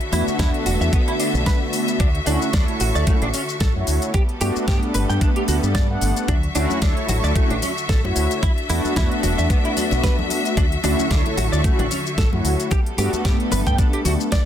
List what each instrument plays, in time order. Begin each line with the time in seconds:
Already playing: string section D3 F#4 A4 E5
0.01 closed hi-hat
0.12 fingered electric bass E2, analog polysynth A3 B3 D4 F#4, clean electric guitar E4, open hi-hat, shaker
0.27 muted fingered electric bass stroke, shaker
0.38 fingered electric bass E2, analog polysynth A3 B3 D4 F#4, clean electric guitar E4, kick, snare, closed hi-hat, shaker
0.54 closed hi-hat
0.66 fingered electric bass E1, clean electric guitar F#4, open hi-hat, shaker
0.80 fingered electric bass E2, clean electric guitar E5, shaker
0.93 clean electric guitar B3, kick, closed hi-hat, shaker
1.08 clean electric guitar E4, closed hi-hat
1.20 clean electric guitar D4, open hi-hat, shaker
1.34 fingered electric bass B1, shaker
1.46 clean electric guitar B4, kick, snare, closed hi-hat, shaker
1.73 open hi-hat, shaker
1.88 closed hi-hat, shaker
2.00 fingered electric bass D2, clean electric guitar D4, string section F#4 C#6, kick, closed hi-hat, shaker
2.15 closed hi-hat
2.26 fingered electric bass D2, analog polysynth A3 C#4 E4 F#4, clean electric guitar D4, open hi-hat, shaker
2.42 shaker
2.53 fingered electric bass D2, clean electric guitar D4, analog polysynth E4 C#5, kick, snare, closed hi-hat, shaker
2.68 closed hi-hat
2.80 fingered electric bass A1, clean electric guitar F#4, open hi-hat, shaker
2.95 fingered electric bass D2, clean electric guitar D5, shaker
3.07 analog polysynth A3 C#4 E4 F#4, clean electric guitar A3, kick, closed hi-hat, shaker
3.22 fingered electric bass A1, clean electric guitar D4, closed hi-hat
3.34 clean electric guitar C#4, open hi-hat, shaker
3.49 shaker
3.60 fingered electric bass A1, clean electric guitar A4, kick, snare, closed hi-hat, shaker
3.75 fingered electric bass F#2, analog polysynth A3 E4 F#4 C#5
3.87 fingered electric bass D2, open hi-hat, shaker
4.02 closed hi-hat, shaker
4.14 string section G3 B3 A4, clean electric guitar G4, kick, closed hi-hat, shaker
4.29 closed hi-hat
4.40 fingered electric bass G2, analog polysynth A3 B3 D4 F#4, clean electric guitar G4, open hi-hat, shaker
4.56 muted fingered electric bass stroke, shaker
4.66 fingered electric bass G2, analog polysynth A3, clean electric guitar G4, kick, snare, closed hi-hat, shaker
4.83 closed hi-hat
4.94 fingered electric bass G1, clean electric guitar B4, open hi-hat, shaker
5.09 fingered electric bass G2, clean electric guitar G5, shaker
5.21 clean electric guitar D4, kick, closed hi-hat, shaker
5.36 clean electric guitar G4, closed hi-hat
5.48 fingered electric bass D2, clean electric guitar F#4, open hi-hat, shaker
5.63 fingered electric bass G2, shaker
5.75 clean electric guitar D5, kick, snare, closed hi-hat, shaker
5.89 analog polysynth A3 B3 D4 F#5
6.01 fingered electric bass G1, open hi-hat, shaker
6.16 closed hi-hat, shaker
6.28 fingered electric bass D2, string section D3 F#4 E5 C#6, clean electric guitar D4, kick, closed hi-hat, high conga, shaker
6.43 closed hi-hat
6.55 fingered electric bass D2, analog polysynth A3 C#4 E4 F#4, clean electric guitar D4, open hi-hat, muted conga, shaker
6.70 high conga, shaker
6.82 fingered electric bass D2, clean electric guitar D4, kick, snare, closed hi-hat, shaker
6.97 closed hi-hat
7.09 fingered electric bass A1, clean electric guitar F#4, open hi-hat, muted conga, high conga, shaker
7.23 fingered electric bass D2, clean electric guitar D5, shaker
7.35 analog polysynth A3 C#4 E4 F#4, clean electric guitar A3, kick, closed hi-hat, shaker
7.50 fingered electric bass A1, clean electric guitar D4, closed hi-hat, muted conga
7.62 clean electric guitar C#4, open hi-hat, high conga, shaker
7.78 shaker
7.89 fingered electric bass A1, clean electric guitar A4, kick, snare, closed hi-hat, shaker
8.03 fingered electric bass F#2, analog polysynth A3 E4 F#4 C#5, muted conga, high conga
8.16 fingered electric bass D2, open hi-hat, shaker
8.31 closed hi-hat, shaker
8.43 string section D4 F#4 A4, clean electric guitar E4, kick, closed hi-hat, muted conga, high conga, shaker
8.58 closed hi-hat
8.69 fingered electric bass E2, analog polysynth A3 B3 D4 F#4, clean electric guitar E4, open hi-hat, shaker
8.85 muted fingered electric bass stroke, high conga, shaker
8.95 fingered electric bass E2, analog polysynth A3 B3 D4 F#4, clean electric guitar E4, kick, snare, closed hi-hat, muted conga, shaker
9.11 closed hi-hat
9.23 fingered electric bass E1, clean electric guitar F#4, open hi-hat, high conga, shaker
9.38 fingered electric bass E2, clean electric guitar E5, muted conga, shaker
9.50 clean electric guitar B3, kick, closed hi-hat, shaker
9.65 clean electric guitar E4, closed hi-hat
9.77 clean electric guitar D4, open hi-hat, high conga, shaker
9.91 fingered electric bass B1, muted conga, shaker
10.04 clean electric guitar B4, kick, snare, closed hi-hat, shaker
10.19 high conga
10.30 open hi-hat, muted conga, shaker
10.45 closed hi-hat, shaker
10.57 fingered electric bass D2, string section D3 C#6, clean electric guitar D4, kick, closed hi-hat, high conga, shaker
10.72 closed hi-hat
10.83 fingered electric bass D2, analog polysynth A3 C#4 E4 F#4, clean electric guitar D4, open hi-hat, muted conga, shaker
10.99 high conga, shaker
11.10 fingered electric bass D2, clean electric guitar D4, analog polysynth E4 C#5, kick, snare, closed hi-hat, shaker
11.26 closed hi-hat, muted conga
11.37 fingered electric bass A1, clean electric guitar F#4, open hi-hat, high conga, shaker
11.52 fingered electric bass D2, clean electric guitar D5, shaker
11.64 analog polysynth A3 C#4 E4 F#4, clean electric guitar A3, kick, closed hi-hat, shaker
11.79 fingered electric bass A1, clean electric guitar D4, closed hi-hat, muted conga
11.91 clean electric guitar C#4, open hi-hat, high conga, shaker
12.06 shaker
12.18 fingered electric bass A1, clean electric guitar A4, kick, snare, closed hi-hat, muted conga, shaker
12.32 fingered electric bass F#2, analog polysynth A3 E4 F#4 C#5, high conga
12.44 fingered electric bass D2, open hi-hat, shaker
12.60 closed hi-hat, shaker
12.71 string section G3 B3 A4, clean electric guitar G4, kick, closed hi-hat, muted conga, high conga, shaker
12.86 closed hi-hat
12.98 fingered electric bass G2, analog polysynth A3 B3 D4 F#4, clean electric guitar G4, open hi-hat, shaker
13.13 muted fingered electric bass stroke, closed hi-hat, muted conga, high conga, shaker
13.23 fingered electric bass G2, analog polysynth A3 B3 D4, clean electric guitar G4, kick, snare, closed hi-hat, shaker
13.40 closed hi-hat
13.51 fingered electric bass G1, clean electric guitar B4, open hi-hat, high conga, shaker
13.66 fingered electric bass G2, clean electric guitar G5, kick, closed hi-hat, muted conga, shaker
13.78 clean electric guitar D4, kick, closed hi-hat, shaker
13.93 clean electric guitar G4, closed hi-hat
14.05 fingered electric bass D2, clean electric guitar F#4, open hi-hat, muted conga, high conga, shaker
14.21 shaker
14.32 clean electric guitar D5, kick, snare, closed hi-hat, shaker